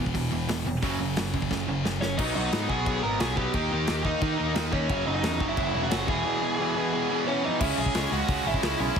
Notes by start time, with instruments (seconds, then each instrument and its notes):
Already playing: distorted electric guitar E2 B2 E3
0.00 picked electric bass E1
0.06 kick
0.14 picked electric bass E1, distorted electric guitar E2 B2, kick, open hi-hat
0.31 picked electric bass E1, distorted electric guitar E2 B2
0.49 picked electric bass E1, distorted electric guitar E2 B2, snare, open hi-hat
0.66 picked electric bass F1, distorted electric guitar E2 B2
0.82 picked electric bass F#1, distorted electric guitar F#2 C#3 F#3, kick, open hi-hat
1.00 picked electric bass F#1, distorted electric guitar F#2 C#3
1.17 picked electric bass F#1, distorted electric guitar F#2 C#3, snare, open hi-hat
1.34 picked electric bass F#1, distorted electric guitar F#2 C#3, kick
1.42 kick
1.51 picked electric bass F#1, distorted electric guitar F#2 C#3, kick, snare
1.68 picked electric bass F#1, distorted electric guitar F#2 C#3
1.84 picked electric bass F#1, distorted electric guitar F#2 C#3, snare
2.01 picked electric bass F#1, distorted electric guitar F#2 C#3, lead electric guitar C#4 C#5, snare
2.17 picked electric bass B1, distorted electric guitar B2 F#3 B3, lead electric guitar D#4 D#5, kick, crash
2.35 picked electric bass B1, distorted electric guitar B2 F#3 B3, lead electric guitar D#4 D#5
2.52 picked electric bass G#2, distorted electric guitar B2 F#3 B3, snare, crash
2.69 picked electric bass B1, distorted electric guitar B2 F#3 B3, lead electric guitar G#4 G#5, kick
2.86 picked electric bass B1, distorted electric guitar B2 F#3 B3, kick, crash
3.03 picked electric bass G#1, distorted electric guitar B2 F#3 B3, lead electric guitar A#4 A#5
3.19 picked electric bass B1, distorted electric guitar B2 F#3 B3, lead electric guitar G#4 G#5, snare, crash
3.36 distorted electric guitar B2 F#3 B3, lead electric guitar G4 G5, kick
3.53 picked electric bass D#2, distorted electric guitar D#3 A#3 D#4, kick, crash
3.71 picked electric bass D#2, distorted electric guitar D#3 A#3 D#4
3.87 picked electric bass D#2, distorted electric guitar D#3 A#3 D#4, snare, crash
4.05 distorted electric guitar D#3 A#3 D#4, lead electric guitar D#4 D#5, kick
4.21 distorted electric guitar D#3 A#3 D#4, picked electric bass D#3, kick, crash
4.38 picked electric bass D#2, distorted electric guitar D#3 A#3 D#4
4.55 picked electric bass D#2, distorted electric guitar D#3 A#3 D#4, snare, crash
4.72 picked electric bass D#2, distorted electric guitar D#3 A#3 D#4, lead electric guitar C#4 C#5, kick
4.89 picked electric bass F#1, distorted electric guitar F#2 C#3 F#3, kick, crash
5.06 picked electric bass F#1, distorted electric guitar F#2 C#3 F#3, lead electric guitar D#4 D#5
5.15 lead electric guitar D#4 D#5
5.23 picked electric bass E2, distorted electric guitar F#2 C#3 F#3, snare, crash
5.40 picked electric bass F#1, distorted electric guitar F#2 C#3 F#3, kick
5.49 lead electric guitar E4 E5
5.57 picked electric bass F#1, distorted electric guitar F#2 C#3 F#3, kick, crash
5.74 picked electric bass E1, distorted electric guitar F#2 C#3 F#3
5.83 lead electric guitar F#4 F#5
5.90 picked electric bass F#1, distorted electric guitar F#2 C#3 F#3, snare, crash
6.08 picked electric bass E1, distorted electric guitar E2 B2 E3, lead electric guitar G#4 G#5, kick
6.25 distorted electric guitar E2 B2 E3
6.42 distorted electric guitar E2 B2 E3
6.58 distorted electric guitar E2 B2 E3
6.63 distorted electric guitar E3
6.76 distorted electric guitar E2 B2 E3
6.93 distorted electric guitar E2 B2 E3
7.10 distorted electric guitar E2 B2 E3
7.28 distorted electric guitar E2 B2 E3, lead electric guitar C#4 C#5
7.44 distorted electric guitar E2 B2 E3, lead electric guitar D#4 D#5
7.61 picked electric bass C#2, distorted electric guitar C#3 G#3 C#4, lead electric guitar E4 E5, kick, crash
7.78 picked electric bass B1, lead electric guitar G#4 G#5
7.86 kick
7.94 picked electric bass C#2, distorted electric guitar C#3 G#3 C#4, snare, open hi-hat
8.11 picked electric bass C#2, distorted electric guitar C#3 G#3 C#4, lead electric guitar F#4 F#5
8.28 picked electric bass C#2, distorted electric guitar C#3 G#3 C#4, kick, open hi-hat
8.44 picked electric bass G#1, distorted electric guitar G#3 C#4, lead electric guitar E4 E5
8.49 distorted electric guitar C#3
8.54 kick
8.63 picked electric bass C#2, distorted electric guitar C#3 G#3 C#4, snare, open hi-hat
8.79 picked electric bass B1, distorted electric guitar C#3 G#3 C#4, lead electric guitar E4 E5
8.96 picked electric bass C#2, distorted electric guitar C#3 G#3, kick, open hi-hat